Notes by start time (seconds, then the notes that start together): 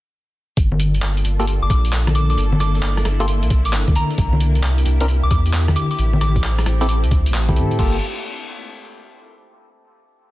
0.57 G1 A#3 D4 F4 A4, kick, closed hi-hat
0.72 high conga
0.80 closed hi-hat
0.95 closed hi-hat
1.02 clap
1.17 closed hi-hat
1.25 G1, closed hi-hat
1.39 A#3 F4 G4 A4, closed hi-hat
1.47 closed hi-hat
1.62 G1 D6
1.70 A#1 D6, kick, closed hi-hat
1.85 closed hi-hat
1.92 clap
2.07 cross-stick, closed hi-hat, high conga
2.15 D6, closed hi-hat
2.30 D6, closed hi-hat
2.38 G1 E4, closed hi-hat
2.53 high conga
2.60 D6, cross-stick, closed hi-hat
2.75 closed hi-hat
2.83 clap
2.97 cross-stick, closed hi-hat
3.05 G1, cross-stick, closed hi-hat
3.20 A#3 F4 G4 A4 C6, closed hi-hat
3.28 closed hi-hat
3.43 C2, closed hi-hat
3.50 kick, closed hi-hat
3.65 G1 D6, closed hi-hat
3.73 clap
3.88 D2, kick, closed hi-hat, high conga
3.95 A#5, closed hi-hat
4.10 closed hi-hat
4.18 C2 E4 G4, kick, closed hi-hat
4.33 high conga
4.40 closed hi-hat
4.55 closed hi-hat
4.63 clap
4.78 closed hi-hat
4.86 C2, closed hi-hat
5.01 C4 D4 E4 A#4, closed hi-hat
5.08 closed hi-hat
5.23 C2 D6
5.31 E2 D6, kick, closed hi-hat
5.46 closed hi-hat
5.53 clap
5.68 cross-stick, closed hi-hat, high conga
5.76 A3 C4 D6, closed hi-hat
5.91 D6, closed hi-hat
5.99 A1, closed hi-hat
6.13 high conga
6.21 D6, cross-stick, closed hi-hat
6.36 kick, closed hi-hat
6.44 clap
6.59 cross-stick, closed hi-hat
6.66 A1, cross-stick, closed hi-hat
6.81 C4 E4 G4 A4 D6, closed hi-hat
6.89 D6, closed hi-hat
7.04 D2, closed hi-hat
7.11 kick, closed hi-hat
7.26 A1, closed hi-hat
7.34 clap
7.49 C4 E4 G4 A4, kick, closed hi-hat, high conga
7.56 A2, closed hi-hat
7.71 A2, closed hi-hat
7.79 G1 A#3 F4 G4 A4, kick, crash